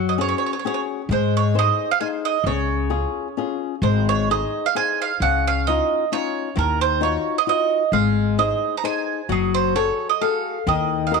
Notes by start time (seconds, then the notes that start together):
Already playing: F#2 F#3
0.09 D#5
0.18 C#4 F#4 G#4 C#5
0.29 C#5
0.38 C#5
0.46 C#5
0.53 C#5
0.59 C#5
0.65 C#4 F#4 G#4 C#5
0.74 C#5
1.09 G#2 G#3 C5
1.37 C#5
1.54 D#4 G#4 C5
1.59 D#5
1.91 F5
2.00 D#4 G#4 C5 G#5
2.25 D#5
2.44 C#2 C#3 C#5
2.90 C#4 F4 G#4
3.37 C#4 F4 G#4
3.82 G#1 G#3 C5
4.09 C#5
4.30 D#4 G#4 C5 D#5
4.66 F5
4.75 D#4 G#4 C5 G#5
5.02 F5
5.20 C#2 C#3 F#5
5.47 F5
5.67 C#4 D#4 F4 D#5
6.12 C#4 D#4 F4 C#5
6.56 D#2 D#3 A#4
6.81 C5
7.01 D#4 F4 F#4 C#5
7.38 D#5
7.47 D#4 F4 F#4 D#5
7.92 G#1 G#3 F5
8.38 D#4 G#4 C5 D#5
8.77 A#5
8.83 D#4 G#4 C5 G#5
9.29 F#1 F#3 G#4
9.54 C5
9.75 F#4 G#4 A4 C#5
10.10 D#5
10.21 F#4 G#4 A4 F5
10.67 D#2 D#3 D#5
11.07 F5
11.11 D#4 F#4 A#4 D#5